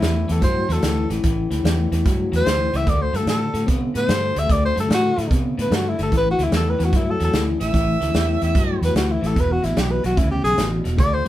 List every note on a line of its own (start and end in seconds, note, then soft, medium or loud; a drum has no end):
0.00 0.24 E2 medium
0.00 0.25 A2 medium
0.00 0.26 E3 medium
0.00 0.33 E4 medium
0.00 snare loud
0.00 closed hi-hat medium
0.28 0.40 E2 medium
0.28 0.40 A2 medium
0.28 0.41 E3 medium
0.28 0.43 A4 medium
0.28 snare soft
0.28 closed hi-hat medium
0.41 0.64 G2 medium
0.41 0.66 A2 medium
0.41 0.67 F#3 medium
0.41 0.74 C5 medium
0.41 kick loud
0.41 snare soft
0.41 closed hi-hat medium
0.68 0.80 E2 medium
0.68 0.81 A2 medium
0.68 0.82 F#3 medium
0.68 snare soft
0.68 closed hi-hat medium
0.72 1.11 A4 medium
0.82 1.05 D2 medium
0.82 1.07 A2 medium
0.82 1.08 E3 loud
0.82 snare loud
0.82 closed hi-hat medium
1.10 1.21 A1 medium
1.10 1.22 A2 medium
1.10 1.23 E3 medium
1.10 snare soft
1.10 closed hi-hat medium
1.23 1.45 A1 loud
1.23 1.49 A2 medium
1.23 1.49 E3 medium
1.23 kick medium
1.23 snare soft
1.23 closed hi-hat medium
1.50 1.61 D2 medium
1.50 1.63 A2 medium
1.50 1.63 E3 medium
1.50 snare soft
1.50 closed hi-hat medium
1.64 1.86 E2 medium
1.64 1.89 A2 medium
1.64 1.89 E3 medium
1.64 snare loud
1.64 closed hi-hat medium
1.91 2.02 E2 medium
1.91 2.04 A2 medium
1.91 2.04 E3 medium
1.91 snare soft
1.91 closed hi-hat medium
2.05 2.27 G2 medium
2.05 2.30 A2 medium
2.05 2.30 F#3 medium
2.05 kick loud
2.05 snare soft
2.05 closed hi-hat medium
2.32 2.43 E2 medium
2.32 2.44 A2 medium
2.32 2.44 F#3 medium
2.32 snare soft
2.32 closed hi-hat medium
2.36 2.78 C5 loud
2.45 2.68 D2 medium
2.45 2.70 A2 medium
2.45 2.70 E3 loud
2.45 snare loud
2.45 closed hi-hat medium
2.73 2.84 C#2 medium
2.73 2.85 A2 medium
2.73 2.86 E3 medium
2.73 2.91 E5 medium
2.73 snare soft
2.73 closed hi-hat medium
2.86 3.09 D2 loud
2.86 3.11 D3 medium
2.86 3.11 A3 medium
2.86 3.03 D5 medium
2.86 kick loud
2.86 snare soft
2.86 closed hi-hat medium
3.02 3.18 C5 medium
3.13 3.24 G2 medium
3.13 3.25 D3 medium
3.13 3.26 A3 medium
3.13 3.28 A4 medium
3.13 snare soft
3.13 closed hi-hat medium
3.26 3.48 A2 medium
3.26 3.51 D3 medium
3.26 3.52 A3 medium
3.26 3.68 A4 medium
3.26 snare loud
3.26 closed hi-hat medium
3.54 3.65 A2 medium
3.54 3.65 D3 medium
3.54 3.66 A3 medium
3.54 snare soft
3.54 closed hi-hat medium
3.66 3.90 C3 medium
3.66 3.92 D3 medium
3.66 3.92 B3 medium
3.66 kick loud
3.66 snare soft
3.66 closed hi-hat medium
3.94 4.06 A2 medium
3.94 4.06 D3 medium
3.94 4.07 B3 medium
3.94 4.40 C5 loud
3.94 snare soft
3.94 closed hi-hat medium
4.07 4.30 G2 medium
4.07 4.32 D3 medium
4.07 4.33 A3 medium
4.07 snare loud
4.07 closed hi-hat medium
4.35 4.47 D2 medium
4.35 4.47 D3 medium
4.35 4.47 A3 medium
4.35 4.53 E5 loud
4.35 snare soft
4.35 closed hi-hat medium
4.48 4.71 D2 loud
4.48 4.73 D3 medium
4.48 4.73 A3 medium
4.48 4.64 D5 medium
4.48 kick loud
4.48 snare soft
4.48 closed hi-hat medium
4.65 4.77 C5 medium
4.76 4.87 G2 medium
4.76 4.88 D3 medium
4.76 4.88 A3 medium
4.76 snare soft
4.76 closed hi-hat medium
4.80 4.91 A4 medium
4.89 5.12 A2 medium
4.89 5.14 D3 medium
4.89 5.14 A3 medium
4.89 snare loud
4.89 closed hi-hat medium
4.94 5.31 F#4 medium
5.16 5.28 A2 medium
5.16 5.29 D3 medium
5.16 5.29 A3 medium
5.16 snare soft
5.16 closed hi-hat medium
5.30 5.52 C3 medium
5.30 5.55 D3 medium
5.30 5.55 B3 loud
5.30 kick loud
5.30 snare soft
5.30 closed hi-hat medium
5.58 5.69 A2 medium
5.58 5.70 D3 medium
5.58 5.70 B3 medium
5.58 5.77 B4 medium
5.58 snare soft
5.58 closed hi-hat medium
5.71 5.92 G2 medium
5.71 5.95 D3 medium
5.71 5.96 A3 loud
5.71 snare loud
5.71 closed hi-hat medium
5.75 5.91 F#4 medium
5.90 6.00 E4 medium
5.99 6.09 G1 medium
5.99 6.10 D3 medium
5.99 6.11 A3 medium
5.99 snare soft
5.99 closed hi-hat medium
6.03 6.14 A4 medium
6.12 6.33 A1 loud
6.12 6.36 A2 medium
6.12 6.36 E3 loud
6.12 kick medium
6.12 snare soft
6.12 closed hi-hat medium
6.17 6.28 B4 loud
6.31 6.46 F#4 medium
6.39 6.49 D2 medium
6.39 6.51 A2 medium
6.39 6.51 E3 medium
6.39 snare soft
6.39 closed hi-hat medium
6.44 6.55 E4 medium
6.52 6.73 E2 medium
6.52 6.76 A2 medium
6.52 6.77 E3 loud
6.52 snare loud
6.52 closed hi-hat medium
6.57 6.71 A4 medium
6.70 6.86 B4 medium
6.79 6.90 E2 medium
6.79 6.91 A2 medium
6.79 6.91 E3 medium
6.79 snare soft
6.79 closed hi-hat medium
6.84 6.98 F#4 medium
6.92 7.17 A2 medium
6.92 7.17 F#3 medium
6.92 kick loud
6.92 snare soft
6.92 closed hi-hat medium
6.97 7.12 E4 medium
7.11 7.22 A4 medium
7.19 7.31 E2 medium
7.19 7.31 A2 medium
7.19 7.32 F#3 medium
7.19 snare soft
7.19 closed hi-hat medium
7.25 7.44 A4 medium
7.33 7.55 D2 medium
7.33 7.58 A2 medium
7.33 7.58 E3 medium
7.33 snare loud
7.33 closed hi-hat medium
7.60 7.71 A1 medium
7.60 7.72 A2 medium
7.60 7.72 E3 medium
7.60 8.39 E5 loud
7.60 snare soft
7.60 closed hi-hat medium
7.73 7.96 A1 loud
7.73 7.98 A2 medium
7.73 7.98 E3 medium
7.73 kick loud
7.73 snare soft
7.73 closed hi-hat medium
8.00 8.12 D2 medium
8.00 8.13 A2 medium
8.00 8.13 E3 medium
8.00 snare soft
8.00 closed hi-hat medium
8.14 8.36 E2 medium
8.14 8.39 A2 medium
8.14 8.39 E3 loud
8.14 snare loud
8.14 closed hi-hat medium
8.42 8.52 E2 medium
8.42 8.54 A2 medium
8.42 8.54 E3 medium
8.42 8.78 E5 medium
8.42 snare soft
8.42 closed hi-hat medium
8.55 8.76 G2 medium
8.55 8.80 A2 medium
8.55 8.80 F#3 medium
8.55 kick loud
8.55 snare soft
8.55 closed hi-hat medium
8.81 8.92 E2 medium
8.81 8.94 A2 medium
8.81 8.95 F#3 medium
8.81 8.96 B4 medium
8.81 snare soft
8.81 closed hi-hat medium
8.95 9.17 D2 medium
8.95 9.20 A2 medium
8.95 9.20 E3 loud
8.95 9.13 F#4 medium
8.95 snare loud
8.95 closed hi-hat medium
9.12 9.28 E4 medium
9.21 9.38 A1 medium
9.21 9.34 A2 medium
9.21 9.34 E3 medium
9.21 snare soft
9.21 closed hi-hat medium
9.27 9.42 A4 medium
9.35 9.58 E1 medium
9.35 9.60 E2 medium
9.35 9.60 B2 medium
9.35 kick loud
9.35 snare soft
9.35 closed hi-hat medium
9.40 9.54 B4 medium
9.52 9.66 F#4 medium
9.62 9.74 A1 medium
9.62 9.74 E2 medium
9.62 9.75 B2 medium
9.62 9.81 E4 medium
9.62 snare soft
9.62 closed hi-hat medium
9.75 9.99 B1 medium
9.75 10.01 E2 medium
9.75 10.01 B2 medium
9.75 snare loud
9.75 closed hi-hat medium
9.80 9.93 G4 medium
9.91 10.04 B4 medium
10.04 10.15 B1 medium
10.04 10.15 E2 medium
10.04 10.16 B2 medium
10.04 10.20 F#4 medium
10.04 snare soft
10.04 closed hi-hat medium
10.17 10.39 D2 medium
10.17 10.42 E2 medium
10.17 10.42 C#3 medium
10.17 10.31 E4 medium
10.17 kick loud
10.17 snare soft
10.17 closed hi-hat medium
10.32 10.44 G4 medium
10.44 10.55 B1 medium
10.44 10.56 E2 medium
10.44 10.56 C#3 medium
10.44 10.66 G#4 loud
10.44 snare soft
10.44 closed hi-hat medium
10.57 10.80 A1 medium
10.57 10.82 E2 medium
10.57 10.82 B2 medium
10.57 snare loud
10.57 closed hi-hat medium
10.84 11.00 E1 medium
10.84 10.97 E2 medium
10.84 10.97 B2 medium
10.84 snare soft
10.84 closed hi-hat medium
10.97 11.20 D2 loud
10.97 11.23 D3 medium
10.97 11.23 A3 medium
10.97 11.15 D5 loud
10.97 kick loud
10.97 snare soft
10.97 closed hi-hat medium
11.14 11.26 C5 medium
11.25 11.28 D3 medium